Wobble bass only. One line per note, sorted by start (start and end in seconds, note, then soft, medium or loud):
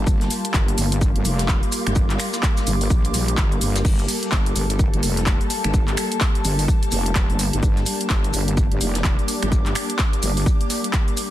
0.07 0.29 G1 loud
0.54 0.76 G1 loud
0.78 1.13 G1 loud
1.16 1.24 G1 medium
1.25 1.61 F1 loud
1.87 2.18 G1 medium
2.67 2.89 G1 loud
2.90 3.12 A#1 loud
3.14 3.36 A#1 loud
3.38 3.60 G1 loud
3.61 3.83 G1 medium
3.85 4.07 G1 loud
4.32 4.54 G1 loud
4.56 4.91 G1 loud
4.94 5.01 G1 loud
5.03 5.39 F1 loud
5.64 5.96 G1 medium
6.45 6.67 G1 loud
6.92 7.28 F1 loud
7.30 7.51 G1 loud
7.53 7.61 G1 medium
7.63 7.85 G1 loud
8.10 8.32 G1 medium
8.34 8.69 G1 medium
8.72 8.79 G1 loud
8.81 9.17 F1 loud
9.43 9.74 G1 loud
10.23 10.45 G1 loud